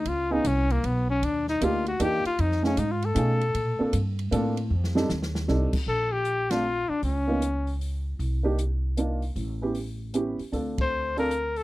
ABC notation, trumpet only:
X:1
M:3/4
L:1/8
Q:"Swing" 1/4=155
K:Bb
V:1 name="Trumpet"
F E _D B, _C D | D E F _G =G F | E ^C (3E F A- A2- | A2 z4 |
z6 | A G2 F2 D | _D4 z2 | z6 |
z6 | z c2 B2 A |]